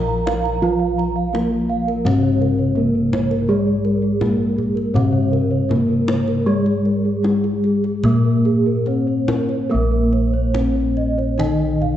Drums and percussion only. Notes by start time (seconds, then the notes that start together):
0.27 kendang slap, kendang high
0.45 kendang slap
0.99 kendang slap
1.35 kendang slap, kendang high
1.88 kendang slap
2.06 kendang low
2.42 kendang slap
3.13 kendang slap, kendang high, kendang low
3.31 kendang slap
3.85 kendang slap
4.21 kendang slap, kendang high, kendang low
4.58 kendang low
4.77 kendang slap
4.96 kendang low
5.33 kendang slap
5.71 kendang high, kendang low
6.08 kendang slap, kendang high
6.28 kendang slap
6.66 kendang slap
6.85 kendang slap
7.24 kendang slap, kendang high
7.44 kendang slap
7.64 kendang slap
7.84 kendang slap
8.04 kendang low
8.45 kendang slap
8.86 kendang slap
9.28 kendang slap, kendang high, kendang low
9.49 kendang slap
10.12 kendang slap
10.54 kendang high, kendang low
10.97 kendang slap
11.19 kendang slap
11.40 kendang low
11.82 kendang low